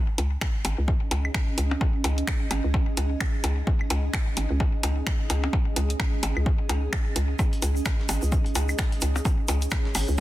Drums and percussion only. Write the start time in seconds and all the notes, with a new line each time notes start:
0.18 open hi-hat, percussion blips
0.41 finger snap, kick, percussion blips
0.65 open hi-hat, percussion blips
0.88 kick, percussion blips
1.11 open hi-hat, percussion blips
1.25 claves
1.34 finger snap, kick, percussion blips
1.58 open hi-hat, percussion blips
1.71 percussion blips
1.81 kick, percussion blips
2.04 open hi-hat, percussion blips
2.18 open hi-hat
2.27 finger snap, kick, percussion blips
2.51 open hi-hat, claves, percussion blips
2.74 kick, percussion blips
2.97 open hi-hat, percussion blips
3.20 finger snap, kick, percussion blips
3.44 open hi-hat, percussion blips
3.67 kick, percussion blips
3.81 claves
3.90 open hi-hat, percussion blips
4.14 finger snap, kick, percussion blips
4.37 open hi-hat, percussion blips
4.60 kick, percussion blips
4.83 open hi-hat, percussion blips
5.07 finger snap, kick, claves, percussion blips
5.30 open hi-hat, percussion blips
5.44 percussion blips
5.53 kick, percussion blips
5.76 open hi-hat, percussion blips
5.90 open hi-hat
6.00 finger snap, kick, percussion blips
6.23 open hi-hat, percussion blips
6.37 claves
6.46 kick, percussion blips
6.69 open hi-hat, percussion blips
6.93 finger snap, kick, percussion blips
7.16 open hi-hat, percussion blips
7.39 kick, claves, percussion blips, shaker
7.53 closed hi-hat
7.62 open hi-hat, percussion blips, shaker
7.76 shaker
7.86 finger snap, kick, snare, percussion blips, shaker
7.99 snare
8.09 open hi-hat, percussion blips, shaker
8.22 shaker
8.32 kick, percussion blips, shaker
8.46 closed hi-hat
8.55 open hi-hat, percussion blips, shaker
8.69 claves, shaker
8.78 finger snap, kick, snare, percussion blips, shaker
8.92 closed hi-hat
9.01 open hi-hat, percussion blips, shaker
9.16 percussion blips, shaker
9.25 kick, percussion blips, shaker
9.48 open hi-hat, percussion blips, shaker
9.62 open hi-hat, shaker
9.71 finger snap, kick, snare, percussion blips, shaker
9.85 snare
9.95 open hi-hat, claves, percussion blips, shaker
10.08 shaker